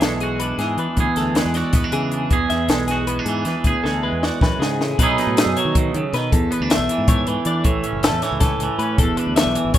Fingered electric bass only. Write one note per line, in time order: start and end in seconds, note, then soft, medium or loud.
0.01 0.52 B1 medium
0.58 0.75 G#2 medium
0.77 0.86 E3 medium
0.97 1.05 D2 loud
1.17 1.42 D2 medium
1.45 1.62 E2 medium
1.74 1.82 E2 medium
1.92 2.26 C#3 medium
2.31 2.48 E2 loud
2.50 2.67 E2 medium
2.68 3.19 B1 loud
3.26 3.43 G#2 medium
3.45 3.54 E3 medium
3.64 3.73 D2 loud
3.84 4.09 D2 medium
4.12 4.29 E2 loud
4.41 4.50 E2 medium
4.59 4.93 C#3 medium
4.99 5.16 B2 loud
5.27 5.44 A2 medium
5.46 5.54 F#2 loud
5.65 5.90 D#3 medium
5.94 6.03 D#3 medium
6.13 6.30 B2 medium
6.33 6.49 E2 loud
6.61 6.77 D2 medium
6.78 6.87 B1 loud
6.98 7.24 G#2 medium
7.27 7.36 G#2 medium
7.46 7.63 E3 medium
7.65 7.82 A1 loud
7.93 8.10 F#1 medium
8.12 8.21 E2 loud
8.31 8.57 C#2 medium
8.59 8.68 C#2 medium
8.78 8.96 A2 medium
8.98 9.15 E1 loud
9.27 9.44 D2 medium
9.46 9.54 B1 loud
9.65 9.78 G#1 medium